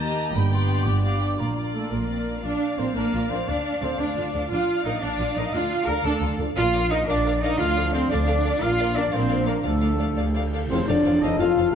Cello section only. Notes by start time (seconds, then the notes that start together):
Already playing: D#2
0.34 G2
0.85 G2
1.38 A#2
1.73 A3
1.91 A#2 A#3
2.44 D4
2.79 C4
2.96 A#3
3.31 C4
3.48 D4
3.82 C4
3.99 D4
4.51 F4
4.85 D#4
5.03 D4
5.37 D#4
5.53 F4
5.88 A#4
6.05 A4
6.56 F4
6.91 D#4
7.07 D4
7.41 D#4
7.58 F4
7.93 C4
8.11 D4
8.62 F4
8.97 D4
9.14 C4
9.49 A#3
9.65 A3
10.71 F2
10.88 F2
11.05 F2
11.23 F2
11.40 F2
11.58 F2